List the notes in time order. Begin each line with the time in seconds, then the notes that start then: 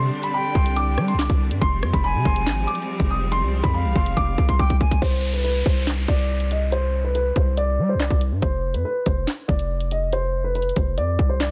Already playing: C3 D3 G3 C4 D4 C6
0.23 B5, closed hi-hat
0.34 G5 B5
0.55 C2 C6, kick
0.66 closed hi-hat
0.76 D6, closed hi-hat
0.98 G3, cross-stick
1.08 C6, closed hi-hat
1.14 C2
1.19 D6, snare, clap
1.30 C2, kick, closed hi-hat
1.51 G2, closed hi-hat
1.61 F1 F3 G3 G#3 C4 C6, kick, closed hi-hat
1.83 F2, cross-stick
1.93 F1 B5, kick, closed hi-hat
2.04 G#5 B5
2.15 C3
2.25 F1 C6, kick
2.36 closed hi-hat
2.47 G#1, snare, clap
2.67 D6, closed hi-hat
2.75 closed hi-hat
2.82 closed hi-hat
3.00 F1, kick, closed hi-hat
3.11 D#6
3.32 C6, closed hi-hat
3.42 C2
3.63 F2 B5, kick, closed hi-hat
3.74 F5 B5
3.85 C2
3.96 F1 C6, kick
4.06 closed hi-hat
4.17 F1 D6, kick, closed hi-hat
4.38 C2, kick
4.49 C6, kick, closed hi-hat
4.59 G5 D6, kick
4.70 kick, closed hi-hat
4.81 G#5, kick
4.91 kick, closed hi-hat
5.02 C2 C5, kick, closed hi-hat, downlifter
5.33 B4, closed hi-hat
5.44 B4
5.66 C2, kick, closed hi-hat
5.87 snare, clap, closed hi-hat
6.08 C2 D5, kick
6.19 closed hi-hat
6.40 closed hi-hat
6.51 D#5, closed hi-hat
6.72 C5, closed hi-hat
7.04 B4
7.15 B4, closed hi-hat
7.36 C2 C5, kick, closed hi-hat
7.57 D5, closed hi-hat
7.79 G3
7.89 C5
7.95 C2
8.00 D5, snare, clap, closed hi-hat
8.10 C2, kick
8.21 closed hi-hat
8.32 G2
8.42 F1 C5, kick, closed hi-hat
8.74 F2 B4, closed hi-hat
8.85 B4
9.06 F1 C5, kick, closed hi-hat
9.27 snare, clap, closed hi-hat
9.48 F1 D5, kick
9.59 closed hi-hat
9.81 closed hi-hat
9.91 D#5, closed hi-hat
10.13 C5, closed hi-hat
10.44 B4
10.55 B4, closed hi-hat
10.62 closed hi-hat
10.69 closed hi-hat
10.76 F1 C5, kick, closed hi-hat
10.98 F2 D5, closed hi-hat
11.19 C2, kick
11.29 C5
11.40 D5, snare, clap, closed hi-hat